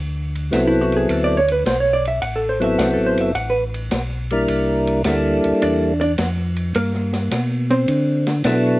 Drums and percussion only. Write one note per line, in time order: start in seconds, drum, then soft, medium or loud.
0.35 ride soft
0.53 kick soft
0.53 snare medium
0.53 hi-hat pedal medium
0.53 ride medium
0.92 ride soft
1.09 kick soft
1.09 ride medium
1.48 ride soft
1.66 kick soft
1.66 snare medium
1.66 hi-hat pedal medium
1.66 ride medium
2.05 ride soft
2.22 kick soft
2.22 ride medium
2.61 ride soft
2.79 kick soft
2.79 snare medium
2.79 hi-hat pedal medium
2.79 ride medium
3.17 ride soft
3.35 kick soft
3.35 ride medium
3.74 ride soft
3.91 kick soft
3.91 snare medium
3.91 hi-hat pedal medium
3.91 ride medium
4.30 ride soft
4.48 kick soft
4.48 ride medium
4.87 ride soft
5.04 kick soft
5.04 snare medium
5.04 hi-hat pedal medium
5.04 ride medium
5.44 ride soft
5.62 kick soft
5.62 ride medium
6.01 ride soft
6.18 kick soft
6.18 snare medium
6.18 hi-hat pedal medium
6.18 ride medium
6.56 ride soft
6.74 kick soft
6.74 ride medium
6.94 snare soft
7.13 snare soft
7.13 ride soft
7.31 kick soft
7.31 snare medium
7.31 hi-hat pedal medium
7.31 ride medium
7.70 ride soft
7.88 kick soft
7.88 ride medium
8.27 snare medium
8.27 ride medium
8.44 kick soft
8.44 snare medium
8.44 hi-hat pedal medium
8.44 ride medium